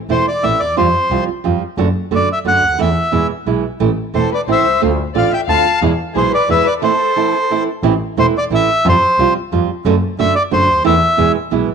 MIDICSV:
0, 0, Header, 1, 5, 480
1, 0, Start_track
1, 0, Key_signature, 0, "minor"
1, 0, Tempo, 335946
1, 1103, Time_signature, 3, 2, 24, 8
1, 16783, End_track
2, 0, Start_track
2, 0, Title_t, "Bandoneon"
2, 0, Program_c, 0, 23
2, 155, Note_on_c, 0, 72, 72
2, 373, Note_off_c, 0, 72, 0
2, 399, Note_on_c, 0, 74, 74
2, 619, Note_on_c, 0, 76, 89
2, 639, Note_off_c, 0, 74, 0
2, 853, Note_on_c, 0, 74, 82
2, 868, Note_off_c, 0, 76, 0
2, 1081, Note_off_c, 0, 74, 0
2, 1108, Note_on_c, 0, 72, 72
2, 1776, Note_off_c, 0, 72, 0
2, 3077, Note_on_c, 0, 74, 75
2, 3273, Note_off_c, 0, 74, 0
2, 3322, Note_on_c, 0, 76, 78
2, 3416, Note_off_c, 0, 76, 0
2, 3539, Note_on_c, 0, 78, 91
2, 4014, Note_off_c, 0, 78, 0
2, 4020, Note_on_c, 0, 76, 76
2, 4675, Note_off_c, 0, 76, 0
2, 5926, Note_on_c, 0, 72, 66
2, 6144, Note_off_c, 0, 72, 0
2, 6210, Note_on_c, 0, 74, 71
2, 6305, Note_off_c, 0, 74, 0
2, 6456, Note_on_c, 0, 76, 88
2, 6875, Note_off_c, 0, 76, 0
2, 7398, Note_on_c, 0, 77, 65
2, 7601, Note_off_c, 0, 77, 0
2, 7629, Note_on_c, 0, 79, 77
2, 7729, Note_off_c, 0, 79, 0
2, 7848, Note_on_c, 0, 81, 92
2, 8287, Note_off_c, 0, 81, 0
2, 8822, Note_on_c, 0, 72, 73
2, 9030, Note_off_c, 0, 72, 0
2, 9063, Note_on_c, 0, 74, 82
2, 9271, Note_off_c, 0, 74, 0
2, 9300, Note_on_c, 0, 76, 90
2, 9530, Note_on_c, 0, 74, 84
2, 9533, Note_off_c, 0, 76, 0
2, 9633, Note_off_c, 0, 74, 0
2, 9770, Note_on_c, 0, 72, 79
2, 10910, Note_off_c, 0, 72, 0
2, 11704, Note_on_c, 0, 72, 81
2, 11807, Note_off_c, 0, 72, 0
2, 11969, Note_on_c, 0, 74, 91
2, 12066, Note_off_c, 0, 74, 0
2, 12213, Note_on_c, 0, 76, 100
2, 12680, Note_off_c, 0, 76, 0
2, 12700, Note_on_c, 0, 72, 82
2, 13340, Note_off_c, 0, 72, 0
2, 14569, Note_on_c, 0, 76, 104
2, 14781, Note_off_c, 0, 76, 0
2, 14795, Note_on_c, 0, 74, 83
2, 14900, Note_off_c, 0, 74, 0
2, 15043, Note_on_c, 0, 72, 81
2, 15476, Note_off_c, 0, 72, 0
2, 15520, Note_on_c, 0, 76, 96
2, 16176, Note_off_c, 0, 76, 0
2, 16783, End_track
3, 0, Start_track
3, 0, Title_t, "Violin section"
3, 0, Program_c, 1, 48
3, 5938, Note_on_c, 1, 69, 53
3, 6150, Note_off_c, 1, 69, 0
3, 6182, Note_on_c, 1, 71, 66
3, 6284, Note_off_c, 1, 71, 0
3, 6417, Note_on_c, 1, 72, 77
3, 6854, Note_off_c, 1, 72, 0
3, 7357, Note_on_c, 1, 74, 58
3, 7579, Note_off_c, 1, 74, 0
3, 7607, Note_on_c, 1, 76, 68
3, 7712, Note_off_c, 1, 76, 0
3, 7806, Note_on_c, 1, 77, 78
3, 8264, Note_off_c, 1, 77, 0
3, 8786, Note_on_c, 1, 68, 67
3, 9011, Note_off_c, 1, 68, 0
3, 9034, Note_on_c, 1, 71, 71
3, 9237, Note_off_c, 1, 71, 0
3, 9255, Note_on_c, 1, 71, 79
3, 9486, Note_off_c, 1, 71, 0
3, 9507, Note_on_c, 1, 71, 71
3, 9616, Note_off_c, 1, 71, 0
3, 9747, Note_on_c, 1, 69, 64
3, 10898, Note_off_c, 1, 69, 0
3, 16783, End_track
4, 0, Start_track
4, 0, Title_t, "Nylon-string guitar"
4, 0, Program_c, 2, 24
4, 129, Note_on_c, 2, 52, 53
4, 134, Note_on_c, 2, 57, 67
4, 141, Note_on_c, 2, 60, 71
4, 143, Note_on_c, 2, 64, 72
4, 380, Note_off_c, 2, 52, 0
4, 383, Note_off_c, 2, 57, 0
4, 386, Note_off_c, 2, 60, 0
4, 387, Note_off_c, 2, 64, 0
4, 611, Note_on_c, 2, 52, 56
4, 618, Note_on_c, 2, 57, 52
4, 620, Note_on_c, 2, 60, 56
4, 625, Note_on_c, 2, 64, 59
4, 860, Note_off_c, 2, 52, 0
4, 864, Note_off_c, 2, 57, 0
4, 865, Note_off_c, 2, 60, 0
4, 868, Note_off_c, 2, 64, 0
4, 1095, Note_on_c, 2, 53, 75
4, 1100, Note_on_c, 2, 55, 76
4, 1103, Note_on_c, 2, 60, 72
4, 1105, Note_on_c, 2, 65, 87
4, 1229, Note_off_c, 2, 53, 0
4, 1231, Note_off_c, 2, 55, 0
4, 1232, Note_off_c, 2, 60, 0
4, 1233, Note_off_c, 2, 65, 0
4, 1577, Note_on_c, 2, 53, 58
4, 1583, Note_on_c, 2, 55, 58
4, 1587, Note_on_c, 2, 60, 61
4, 1590, Note_on_c, 2, 65, 63
4, 1824, Note_off_c, 2, 53, 0
4, 1827, Note_off_c, 2, 55, 0
4, 1829, Note_off_c, 2, 60, 0
4, 1831, Note_off_c, 2, 65, 0
4, 2057, Note_on_c, 2, 53, 58
4, 2064, Note_on_c, 2, 55, 58
4, 2070, Note_on_c, 2, 60, 57
4, 2072, Note_on_c, 2, 65, 61
4, 2303, Note_off_c, 2, 53, 0
4, 2307, Note_off_c, 2, 55, 0
4, 2310, Note_off_c, 2, 60, 0
4, 2311, Note_off_c, 2, 65, 0
4, 2537, Note_on_c, 2, 50, 75
4, 2543, Note_on_c, 2, 57, 75
4, 2549, Note_on_c, 2, 62, 80
4, 2551, Note_on_c, 2, 66, 85
4, 2668, Note_off_c, 2, 50, 0
4, 2671, Note_off_c, 2, 57, 0
4, 2674, Note_off_c, 2, 62, 0
4, 2675, Note_off_c, 2, 66, 0
4, 3016, Note_on_c, 2, 50, 57
4, 3019, Note_on_c, 2, 57, 66
4, 3023, Note_on_c, 2, 62, 57
4, 3029, Note_on_c, 2, 66, 72
4, 3260, Note_off_c, 2, 50, 0
4, 3262, Note_off_c, 2, 57, 0
4, 3264, Note_off_c, 2, 62, 0
4, 3267, Note_off_c, 2, 66, 0
4, 3498, Note_on_c, 2, 50, 53
4, 3500, Note_on_c, 2, 57, 54
4, 3505, Note_on_c, 2, 62, 60
4, 3509, Note_on_c, 2, 66, 61
4, 3743, Note_off_c, 2, 50, 0
4, 3744, Note_off_c, 2, 57, 0
4, 3746, Note_off_c, 2, 62, 0
4, 3748, Note_off_c, 2, 66, 0
4, 3976, Note_on_c, 2, 52, 68
4, 3981, Note_on_c, 2, 57, 72
4, 3986, Note_on_c, 2, 60, 73
4, 3991, Note_on_c, 2, 64, 80
4, 4108, Note_off_c, 2, 52, 0
4, 4110, Note_off_c, 2, 57, 0
4, 4113, Note_off_c, 2, 60, 0
4, 4115, Note_off_c, 2, 64, 0
4, 4453, Note_on_c, 2, 47, 57
4, 4461, Note_on_c, 2, 52, 63
4, 4466, Note_on_c, 2, 56, 66
4, 4466, Note_on_c, 2, 64, 61
4, 4471, Note_on_c, 2, 59, 62
4, 4703, Note_off_c, 2, 47, 0
4, 4707, Note_off_c, 2, 52, 0
4, 4709, Note_off_c, 2, 56, 0
4, 4709, Note_off_c, 2, 64, 0
4, 4712, Note_off_c, 2, 59, 0
4, 4950, Note_on_c, 2, 47, 56
4, 4954, Note_on_c, 2, 52, 53
4, 4956, Note_on_c, 2, 56, 59
4, 4963, Note_on_c, 2, 64, 66
4, 4964, Note_on_c, 2, 59, 55
4, 5193, Note_off_c, 2, 47, 0
4, 5195, Note_off_c, 2, 52, 0
4, 5196, Note_off_c, 2, 56, 0
4, 5200, Note_off_c, 2, 59, 0
4, 5200, Note_off_c, 2, 64, 0
4, 5429, Note_on_c, 2, 52, 70
4, 5431, Note_on_c, 2, 57, 77
4, 5438, Note_on_c, 2, 60, 72
4, 5442, Note_on_c, 2, 64, 77
4, 5558, Note_off_c, 2, 52, 0
4, 5559, Note_off_c, 2, 57, 0
4, 5563, Note_off_c, 2, 60, 0
4, 5565, Note_off_c, 2, 64, 0
4, 5911, Note_on_c, 2, 52, 56
4, 5917, Note_on_c, 2, 57, 66
4, 5921, Note_on_c, 2, 60, 58
4, 5922, Note_on_c, 2, 64, 62
4, 6156, Note_off_c, 2, 52, 0
4, 6159, Note_off_c, 2, 57, 0
4, 6161, Note_off_c, 2, 60, 0
4, 6161, Note_off_c, 2, 64, 0
4, 6399, Note_on_c, 2, 52, 57
4, 6401, Note_on_c, 2, 57, 55
4, 6409, Note_on_c, 2, 60, 61
4, 6412, Note_on_c, 2, 64, 65
4, 6641, Note_off_c, 2, 52, 0
4, 6641, Note_off_c, 2, 57, 0
4, 6645, Note_off_c, 2, 60, 0
4, 6647, Note_off_c, 2, 64, 0
4, 6879, Note_on_c, 2, 50, 71
4, 6882, Note_on_c, 2, 57, 82
4, 6885, Note_on_c, 2, 60, 85
4, 6897, Note_on_c, 2, 65, 76
4, 7006, Note_off_c, 2, 50, 0
4, 7007, Note_off_c, 2, 57, 0
4, 7009, Note_off_c, 2, 60, 0
4, 7015, Note_off_c, 2, 65, 0
4, 7354, Note_on_c, 2, 50, 56
4, 7357, Note_on_c, 2, 57, 66
4, 7365, Note_on_c, 2, 60, 71
4, 7370, Note_on_c, 2, 65, 72
4, 7598, Note_off_c, 2, 50, 0
4, 7600, Note_off_c, 2, 57, 0
4, 7604, Note_off_c, 2, 60, 0
4, 7606, Note_off_c, 2, 65, 0
4, 7830, Note_on_c, 2, 50, 60
4, 7839, Note_on_c, 2, 57, 61
4, 7839, Note_on_c, 2, 60, 60
4, 7844, Note_on_c, 2, 65, 64
4, 8074, Note_off_c, 2, 50, 0
4, 8079, Note_off_c, 2, 57, 0
4, 8079, Note_off_c, 2, 60, 0
4, 8081, Note_off_c, 2, 65, 0
4, 8317, Note_on_c, 2, 47, 77
4, 8317, Note_on_c, 2, 52, 85
4, 8322, Note_on_c, 2, 56, 72
4, 8327, Note_on_c, 2, 59, 80
4, 8331, Note_on_c, 2, 64, 77
4, 8443, Note_off_c, 2, 47, 0
4, 8443, Note_off_c, 2, 52, 0
4, 8446, Note_off_c, 2, 56, 0
4, 8448, Note_off_c, 2, 59, 0
4, 8451, Note_off_c, 2, 64, 0
4, 8787, Note_on_c, 2, 47, 60
4, 8790, Note_on_c, 2, 52, 68
4, 8796, Note_on_c, 2, 56, 65
4, 8801, Note_on_c, 2, 59, 68
4, 8803, Note_on_c, 2, 64, 68
4, 9032, Note_off_c, 2, 47, 0
4, 9033, Note_off_c, 2, 52, 0
4, 9036, Note_off_c, 2, 56, 0
4, 9039, Note_off_c, 2, 59, 0
4, 9040, Note_off_c, 2, 64, 0
4, 9272, Note_on_c, 2, 47, 55
4, 9274, Note_on_c, 2, 52, 62
4, 9275, Note_on_c, 2, 56, 64
4, 9280, Note_on_c, 2, 59, 64
4, 9283, Note_on_c, 2, 64, 59
4, 9515, Note_off_c, 2, 47, 0
4, 9516, Note_off_c, 2, 52, 0
4, 9517, Note_off_c, 2, 56, 0
4, 9519, Note_off_c, 2, 59, 0
4, 9521, Note_off_c, 2, 64, 0
4, 9741, Note_on_c, 2, 52, 72
4, 9748, Note_on_c, 2, 57, 79
4, 9752, Note_on_c, 2, 64, 82
4, 9753, Note_on_c, 2, 60, 77
4, 9875, Note_off_c, 2, 52, 0
4, 9878, Note_off_c, 2, 57, 0
4, 9880, Note_off_c, 2, 64, 0
4, 9881, Note_off_c, 2, 60, 0
4, 10231, Note_on_c, 2, 52, 55
4, 10239, Note_on_c, 2, 57, 58
4, 10240, Note_on_c, 2, 60, 60
4, 10244, Note_on_c, 2, 64, 62
4, 10476, Note_off_c, 2, 52, 0
4, 10480, Note_off_c, 2, 57, 0
4, 10481, Note_off_c, 2, 60, 0
4, 10483, Note_off_c, 2, 64, 0
4, 10720, Note_on_c, 2, 52, 51
4, 10724, Note_on_c, 2, 57, 56
4, 10727, Note_on_c, 2, 60, 55
4, 10736, Note_on_c, 2, 64, 69
4, 10963, Note_off_c, 2, 52, 0
4, 10965, Note_off_c, 2, 57, 0
4, 10967, Note_off_c, 2, 60, 0
4, 10971, Note_off_c, 2, 64, 0
4, 11192, Note_on_c, 2, 52, 88
4, 11199, Note_on_c, 2, 57, 84
4, 11201, Note_on_c, 2, 60, 89
4, 11203, Note_on_c, 2, 64, 82
4, 11325, Note_off_c, 2, 52, 0
4, 11329, Note_off_c, 2, 57, 0
4, 11330, Note_off_c, 2, 60, 0
4, 11331, Note_off_c, 2, 64, 0
4, 11680, Note_on_c, 2, 52, 71
4, 11680, Note_on_c, 2, 57, 70
4, 11687, Note_on_c, 2, 60, 71
4, 11688, Note_on_c, 2, 64, 74
4, 11924, Note_off_c, 2, 52, 0
4, 11924, Note_off_c, 2, 57, 0
4, 11927, Note_off_c, 2, 60, 0
4, 11928, Note_off_c, 2, 64, 0
4, 12153, Note_on_c, 2, 52, 67
4, 12163, Note_on_c, 2, 57, 62
4, 12165, Note_on_c, 2, 60, 65
4, 12175, Note_on_c, 2, 64, 67
4, 12400, Note_off_c, 2, 52, 0
4, 12405, Note_off_c, 2, 57, 0
4, 12406, Note_off_c, 2, 60, 0
4, 12411, Note_off_c, 2, 64, 0
4, 12641, Note_on_c, 2, 53, 82
4, 12645, Note_on_c, 2, 55, 83
4, 12650, Note_on_c, 2, 60, 92
4, 12655, Note_on_c, 2, 65, 91
4, 12769, Note_off_c, 2, 53, 0
4, 12771, Note_off_c, 2, 55, 0
4, 12773, Note_off_c, 2, 60, 0
4, 12776, Note_off_c, 2, 65, 0
4, 13133, Note_on_c, 2, 53, 67
4, 13137, Note_on_c, 2, 55, 72
4, 13139, Note_on_c, 2, 60, 71
4, 13143, Note_on_c, 2, 65, 76
4, 13369, Note_off_c, 2, 53, 0
4, 13371, Note_off_c, 2, 55, 0
4, 13372, Note_off_c, 2, 60, 0
4, 13374, Note_off_c, 2, 65, 0
4, 13605, Note_on_c, 2, 53, 65
4, 13609, Note_on_c, 2, 60, 66
4, 13612, Note_on_c, 2, 55, 66
4, 13617, Note_on_c, 2, 65, 75
4, 13843, Note_off_c, 2, 53, 0
4, 13845, Note_off_c, 2, 60, 0
4, 13846, Note_off_c, 2, 55, 0
4, 13848, Note_off_c, 2, 65, 0
4, 14078, Note_on_c, 2, 50, 89
4, 14084, Note_on_c, 2, 57, 91
4, 14090, Note_on_c, 2, 62, 100
4, 14095, Note_on_c, 2, 66, 96
4, 14203, Note_off_c, 2, 50, 0
4, 14207, Note_off_c, 2, 57, 0
4, 14209, Note_off_c, 2, 62, 0
4, 14212, Note_off_c, 2, 66, 0
4, 14553, Note_on_c, 2, 50, 68
4, 14561, Note_on_c, 2, 62, 76
4, 14564, Note_on_c, 2, 57, 70
4, 14567, Note_on_c, 2, 66, 67
4, 14793, Note_off_c, 2, 50, 0
4, 14797, Note_off_c, 2, 62, 0
4, 14798, Note_off_c, 2, 57, 0
4, 14800, Note_off_c, 2, 66, 0
4, 15020, Note_on_c, 2, 50, 60
4, 15024, Note_on_c, 2, 57, 68
4, 15024, Note_on_c, 2, 62, 61
4, 15032, Note_on_c, 2, 66, 74
4, 15263, Note_off_c, 2, 50, 0
4, 15265, Note_off_c, 2, 57, 0
4, 15265, Note_off_c, 2, 62, 0
4, 15269, Note_off_c, 2, 66, 0
4, 15492, Note_on_c, 2, 52, 89
4, 15496, Note_on_c, 2, 57, 82
4, 15496, Note_on_c, 2, 60, 92
4, 15501, Note_on_c, 2, 64, 97
4, 15623, Note_off_c, 2, 52, 0
4, 15625, Note_off_c, 2, 57, 0
4, 15625, Note_off_c, 2, 60, 0
4, 15627, Note_off_c, 2, 64, 0
4, 15963, Note_on_c, 2, 47, 65
4, 15970, Note_on_c, 2, 52, 74
4, 15976, Note_on_c, 2, 56, 70
4, 15979, Note_on_c, 2, 59, 72
4, 15983, Note_on_c, 2, 64, 80
4, 16212, Note_off_c, 2, 47, 0
4, 16215, Note_off_c, 2, 52, 0
4, 16218, Note_off_c, 2, 56, 0
4, 16220, Note_off_c, 2, 59, 0
4, 16222, Note_off_c, 2, 64, 0
4, 16449, Note_on_c, 2, 52, 61
4, 16453, Note_on_c, 2, 47, 57
4, 16458, Note_on_c, 2, 56, 58
4, 16459, Note_on_c, 2, 59, 70
4, 16463, Note_on_c, 2, 64, 61
4, 16696, Note_off_c, 2, 52, 0
4, 16698, Note_off_c, 2, 47, 0
4, 16701, Note_off_c, 2, 56, 0
4, 16701, Note_off_c, 2, 59, 0
4, 16703, Note_off_c, 2, 64, 0
4, 16783, End_track
5, 0, Start_track
5, 0, Title_t, "Double bass"
5, 0, Program_c, 3, 43
5, 136, Note_on_c, 3, 28, 52
5, 342, Note_off_c, 3, 28, 0
5, 633, Note_on_c, 3, 33, 55
5, 830, Note_off_c, 3, 33, 0
5, 868, Note_on_c, 3, 39, 48
5, 1095, Note_off_c, 3, 39, 0
5, 1103, Note_on_c, 3, 41, 81
5, 1305, Note_off_c, 3, 41, 0
5, 1579, Note_on_c, 3, 36, 54
5, 1783, Note_off_c, 3, 36, 0
5, 2071, Note_on_c, 3, 41, 56
5, 2269, Note_off_c, 3, 41, 0
5, 2545, Note_on_c, 3, 30, 88
5, 2745, Note_off_c, 3, 30, 0
5, 3023, Note_on_c, 3, 30, 58
5, 3223, Note_off_c, 3, 30, 0
5, 3505, Note_on_c, 3, 30, 54
5, 3705, Note_off_c, 3, 30, 0
5, 3749, Note_on_c, 3, 38, 50
5, 3978, Note_off_c, 3, 38, 0
5, 3986, Note_on_c, 3, 40, 82
5, 4186, Note_off_c, 3, 40, 0
5, 4471, Note_on_c, 3, 40, 54
5, 4670, Note_off_c, 3, 40, 0
5, 4954, Note_on_c, 3, 35, 54
5, 5153, Note_off_c, 3, 35, 0
5, 5438, Note_on_c, 3, 33, 81
5, 5636, Note_off_c, 3, 33, 0
5, 5925, Note_on_c, 3, 28, 57
5, 6121, Note_off_c, 3, 28, 0
5, 6400, Note_on_c, 3, 33, 57
5, 6599, Note_off_c, 3, 33, 0
5, 6647, Note_on_c, 3, 36, 49
5, 6875, Note_off_c, 3, 36, 0
5, 6884, Note_on_c, 3, 38, 87
5, 7081, Note_off_c, 3, 38, 0
5, 7365, Note_on_c, 3, 33, 59
5, 7562, Note_off_c, 3, 33, 0
5, 7834, Note_on_c, 3, 38, 58
5, 8035, Note_off_c, 3, 38, 0
5, 8312, Note_on_c, 3, 40, 87
5, 8514, Note_off_c, 3, 40, 0
5, 8787, Note_on_c, 3, 35, 58
5, 8990, Note_off_c, 3, 35, 0
5, 9271, Note_on_c, 3, 40, 56
5, 9473, Note_off_c, 3, 40, 0
5, 11193, Note_on_c, 3, 33, 90
5, 11399, Note_off_c, 3, 33, 0
5, 11684, Note_on_c, 3, 28, 64
5, 11884, Note_off_c, 3, 28, 0
5, 12164, Note_on_c, 3, 33, 64
5, 12364, Note_off_c, 3, 33, 0
5, 12645, Note_on_c, 3, 41, 95
5, 12844, Note_off_c, 3, 41, 0
5, 13121, Note_on_c, 3, 36, 65
5, 13321, Note_off_c, 3, 36, 0
5, 13608, Note_on_c, 3, 41, 71
5, 13803, Note_off_c, 3, 41, 0
5, 14083, Note_on_c, 3, 30, 100
5, 14278, Note_off_c, 3, 30, 0
5, 14551, Note_on_c, 3, 30, 64
5, 14750, Note_off_c, 3, 30, 0
5, 15030, Note_on_c, 3, 30, 64
5, 15227, Note_off_c, 3, 30, 0
5, 15268, Note_on_c, 3, 38, 55
5, 15485, Note_off_c, 3, 38, 0
5, 15494, Note_on_c, 3, 40, 90
5, 15696, Note_off_c, 3, 40, 0
5, 15970, Note_on_c, 3, 40, 63
5, 16173, Note_off_c, 3, 40, 0
5, 16450, Note_on_c, 3, 35, 63
5, 16655, Note_off_c, 3, 35, 0
5, 16694, Note_on_c, 3, 31, 54
5, 16783, Note_off_c, 3, 31, 0
5, 16783, End_track
0, 0, End_of_file